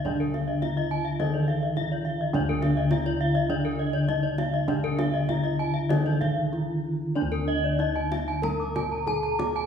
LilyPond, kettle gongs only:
<<
  \new Staff \with { instrumentName = "Kettle gongs" } { \time 4/4 \tempo 4 = 100 << { r4 ees'8 r4. ees'8 r8 | r4 ees'8 r4. ees'8 r8 | r4 ees'8 r4. ees'8 r8 | r4 ees'8 r4. ees'8 r8 | } \\ { d'2. r4 | d'2. r4 | d'2. r4 | d'2. r4 | } >> }
  \new Staff \with { instrumentName = "Kettle gongs" } { \clef bass \time 4/4 << { r2 d2~ | d4 r2. | r2 d2~ | d4 r2. | } \\ { d,2 r2 | d,1~ | d,2 r2 | d,1 | } >> }
>>